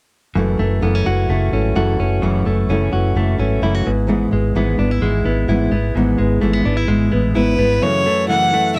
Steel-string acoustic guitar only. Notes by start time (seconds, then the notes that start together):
0.36 F#2 C#3 E3 A3 E4
0.59 E3 A3 E4
0.82 F#2 C#3 E3 A3 E4
1.06 E3 A3 E4
1.29 C#3 E3 A3 E4
1.53 E3 A3 E4
1.75 F#2 C#3 E3 A3 E4
1.99 E3 A3 E4
2.22 F#2 C#3 E3 A3 E4
2.45 E3 A3 E4
2.69 F#2 C#3 E3 A3 E4
2.93 E3 A3 E4
3.15 C#3 E3 A3 E4
3.38 E3 A3 E4
3.62 F#2 C#3 E3 A3 E4
3.84 G#3 B3 E4
4.07 G#2 E3 G#3 B3 E4
4.31 G#3 B3 E4
4.55 G#2 E3 G#3 B3 E4
4.78 G#3 B3 E4
5.01 E3 G#3 B3 E4
5.25 G#3 B3 E4
5.48 G#2 E3 G#3 B3 E4
5.72 G#3 B3 E4
5.96 G#2 E3 G#3 B3 E4
6.19 G#3 B3 E4
6.41 G#2 E3 G#3 B3 E4
6.64 G#3 B3 E4
6.87 E3 G#3 B3 E4
7.11 G#3 B3 E4
7.35 G#2 E3 G#3 B3 E4
7.57 G#3 B3 E4
7.81 F#2 C#3 E3 A3 E4
8.04 E3 A3 E4
8.28 F#2 C#3 E3 A3 E4
8.52 E3 A3 E4
8.76 C#3